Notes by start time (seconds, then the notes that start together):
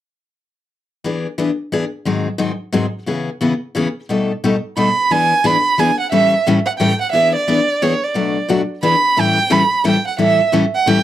1.04 E3 B3 D4 G#4
1.38 E3 B3 D4 G#4
1.72 E3 B3 D4 G#4
2.05 G#2 D#3 F#3 C4 D#4 G#4
2.38 G#2 D#3 F#3 C4 D#4 G#4
2.73 G#2 D#3 F#3 C4 D#4 G#4
3.06 C#3 E3 B3 C#4 G#4
3.41 C#3 E3 B3 C#4 G#4
3.75 C#3 E3 B3 C#4 G#4
4.09 B2 G3 A3 D#4 A4
4.44 B2 G3 A3 D#4 A4
4.77 B2 G3 A3 D#4 A4 B5
5.11 E3 B3 D4 G#4 G#5
5.44 E3 B3 D4 G#4 B5
5.78 E3 B3 D4 G#4 G#5
6.00 F#5
6.12 A2 E3 G3 C#4 E4 A4 E5
6.47 A2 E3 G3 C#4 E4 A4
6.66 F#5
6.79 A2 E3 G3 C#4 E4 A4 G5
7.01 F#5
7.12 E3 B3 D4 G#4 E5
7.35 D5
7.48 E3 B3 D4 G#4
7.82 E3 B3 D4 G#4 C#5
8.04 D5
8.14 B2 F#3 A3 D4 F#4
8.49 B2 F#3 A3 D4 F#4
8.83 E3 B3 D4 G#4 B5
9.17 A2 E3 G3 C#4 E4 A4 G5
9.50 A2 E3 G3 C#4 E4 A4 B5
9.84 A2 E3 G3 C#4 E4 A4 G5
10.07 F#5
10.18 A2 E3 G3 C#4 E4 A4 E5
10.52 A2 E3 G3 C#4 E4 A4
10.75 F#5
10.86 A2 E3 G3 C#4 E4 A4 G5